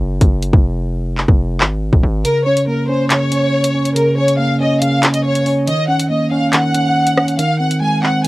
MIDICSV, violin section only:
0, 0, Header, 1, 2, 480
1, 0, Start_track
1, 0, Key_signature, -5, "minor"
1, 0, Tempo, 428571
1, 597, Time_signature, 4, 2, 24, 8
1, 9272, End_track
2, 0, Start_track
2, 0, Title_t, "Violin section"
2, 0, Program_c, 0, 48
2, 2518, Note_on_c, 0, 70, 106
2, 2741, Note_off_c, 0, 70, 0
2, 2756, Note_on_c, 0, 73, 76
2, 2980, Note_off_c, 0, 73, 0
2, 3001, Note_on_c, 0, 70, 77
2, 3223, Note_off_c, 0, 70, 0
2, 3234, Note_on_c, 0, 72, 80
2, 3459, Note_off_c, 0, 72, 0
2, 3476, Note_on_c, 0, 73, 94
2, 4392, Note_off_c, 0, 73, 0
2, 4438, Note_on_c, 0, 70, 83
2, 4661, Note_off_c, 0, 70, 0
2, 4680, Note_on_c, 0, 73, 89
2, 4903, Note_off_c, 0, 73, 0
2, 4914, Note_on_c, 0, 77, 82
2, 5139, Note_off_c, 0, 77, 0
2, 5161, Note_on_c, 0, 75, 77
2, 5383, Note_off_c, 0, 75, 0
2, 5398, Note_on_c, 0, 77, 79
2, 5736, Note_off_c, 0, 77, 0
2, 5757, Note_on_c, 0, 75, 75
2, 5869, Note_off_c, 0, 75, 0
2, 5877, Note_on_c, 0, 73, 88
2, 6101, Note_off_c, 0, 73, 0
2, 6356, Note_on_c, 0, 75, 107
2, 6580, Note_off_c, 0, 75, 0
2, 6596, Note_on_c, 0, 78, 78
2, 6820, Note_off_c, 0, 78, 0
2, 6836, Note_on_c, 0, 75, 82
2, 7060, Note_off_c, 0, 75, 0
2, 7077, Note_on_c, 0, 77, 78
2, 7301, Note_off_c, 0, 77, 0
2, 7314, Note_on_c, 0, 78, 96
2, 8230, Note_off_c, 0, 78, 0
2, 8277, Note_on_c, 0, 77, 89
2, 8501, Note_off_c, 0, 77, 0
2, 8514, Note_on_c, 0, 78, 78
2, 8739, Note_off_c, 0, 78, 0
2, 8752, Note_on_c, 0, 80, 88
2, 8978, Note_off_c, 0, 80, 0
2, 8999, Note_on_c, 0, 78, 85
2, 9222, Note_off_c, 0, 78, 0
2, 9235, Note_on_c, 0, 80, 81
2, 9272, Note_off_c, 0, 80, 0
2, 9272, End_track
0, 0, End_of_file